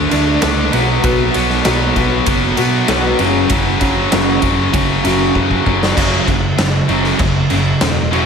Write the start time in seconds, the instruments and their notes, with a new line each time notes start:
Already playing: distorted electric guitar D3 A3 D4
0.11 picked electric bass D2, distorted electric guitar D3 A3 D4, snare, ride
0.42 picked electric bass C#2, distorted electric guitar D3 A3 D4, snare, ride
0.73 picked electric bass B1, distorted electric guitar B2 F#3 B3, ride
1.04 picked electric bass B1, distorted electric guitar B2 F#3 B3, kick, ride
1.34 picked electric bass B1, distorted electric guitar B2 F#3 B3, ride
1.50 snare
1.65 picked electric bass B1, distorted electric guitar B2 F#3 B3, snare, ride
1.96 picked electric bass B1, distorted electric guitar B2 F#3 B3, kick, ride
2.26 picked electric bass F#1, distorted electric guitar B2 F#3 B3, kick, ride
2.57 distorted electric guitar B2 F#3 B3, picked electric bass B2, ride
2.88 picked electric bass B1, distorted electric guitar B2 F#3 B3, snare, ride
3.19 picked electric bass F#1, distorted electric guitar F#2 C#3 F#3, ride
3.50 picked electric bass F#1, distorted electric guitar F#2 C#3 F#3, kick, ride
3.81 picked electric bass F#1, distorted electric guitar F#2 C#3 F#3, kick, ride
4.11 picked electric bass F#1, distorted electric guitar F#2 C#3 F#3, snare, ride
4.42 picked electric bass F#1, distorted electric guitar F#2 C#3 F#3, kick, ride
4.73 picked electric bass F#1, distorted electric guitar F#2 C#3 F#3, kick, ride
5.04 picked electric bass F#1, distorted electric guitar F#2 C#3 F#3, ride
5.35 distorted electric guitar F#2 C#3 F#3, picked electric bass F#2, kick
5.51 kick
5.66 picked electric bass F#1, distorted electric guitar F#2 C#3 F#3, kick
5.83 snare
5.96 picked electric bass F#1, distorted electric guitar F#2 C#3 F#3, kick, crash
6.27 picked electric bass F#1, distorted electric guitar F#2 C#3, kick, crash
6.57 picked electric bass F#1, distorted electric guitar F#2 C#3, snare, crash
6.88 picked electric bass F#1, distorted electric guitar F#2 C#3 F#3, crash
7.04 snare
7.19 picked electric bass F#1, distorted electric guitar F#2 C#3, kick, crash
7.50 picked electric bass F#1, distorted electric guitar F#2 C#3, crash
7.81 picked electric bass E1, distorted electric guitar F#2 C#3, snare, crash
8.11 distorted electric guitar F#2 C#3 F#3, crash